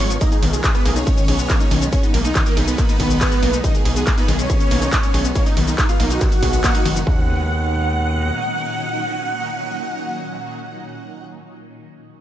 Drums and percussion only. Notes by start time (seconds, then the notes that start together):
0.10 closed hi-hat, shaker
0.21 kick, closed hi-hat, shaker
0.32 closed hi-hat, shaker
0.43 open hi-hat, ride
0.53 closed hi-hat, shaker
0.64 kick, clap, closed hi-hat, shaker
0.75 closed hi-hat, shaker
0.85 open hi-hat, ride
0.96 closed hi-hat, shaker
1.07 kick, closed hi-hat, shaker
1.18 closed hi-hat, shaker
1.28 open hi-hat, ride
1.39 closed hi-hat, shaker
1.50 kick, clap, closed hi-hat, shaker
1.60 closed hi-hat, shaker
1.71 open hi-hat, ride
1.82 closed hi-hat, shaker
1.93 kick, closed hi-hat, shaker
2.03 closed hi-hat, shaker
2.14 open hi-hat, ride
2.25 closed hi-hat, shaker
2.35 kick, clap, closed hi-hat, shaker
2.46 closed hi-hat, shaker
2.57 open hi-hat, ride
2.68 closed hi-hat, shaker
2.78 kick, clap, closed hi-hat, shaker
2.89 closed hi-hat, shaker
3.00 kick, open hi-hat, ride
3.10 closed hi-hat, shaker
3.21 kick, clap, closed hi-hat, shaker
3.32 closed hi-hat, shaker
3.43 open hi-hat, ride
3.53 closed hi-hat, shaker
3.64 kick, closed hi-hat, shaker
3.75 closed hi-hat, shaker
3.85 open hi-hat, ride
3.96 closed hi-hat, shaker
4.07 kick, clap, closed hi-hat, shaker
4.18 closed hi-hat, shaker
4.28 open hi-hat, ride
4.39 closed hi-hat, shaker
4.50 kick, closed hi-hat, shaker
4.60 closed hi-hat, shaker
4.71 open hi-hat, ride
4.82 closed hi-hat, shaker
4.93 kick, clap, closed hi-hat, shaker
5.03 closed hi-hat, shaker
5.14 open hi-hat, ride
5.25 closed hi-hat, shaker
5.35 kick, closed hi-hat, shaker
5.46 open hi-hat, shaker
5.57 open hi-hat, ride
5.68 closed hi-hat, shaker
5.78 kick, clap, closed hi-hat, shaker
5.89 closed hi-hat, shaker
6.00 open hi-hat, ride
6.10 closed hi-hat, shaker
6.21 kick, clap, closed hi-hat, shaker
6.32 closed hi-hat, shaker
6.43 kick, open hi-hat, ride
6.53 closed hi-hat, shaker
6.64 kick, clap, closed hi-hat, shaker
6.75 closed hi-hat, shaker
6.85 open hi-hat, ride
6.96 closed hi-hat, shaker
7.07 kick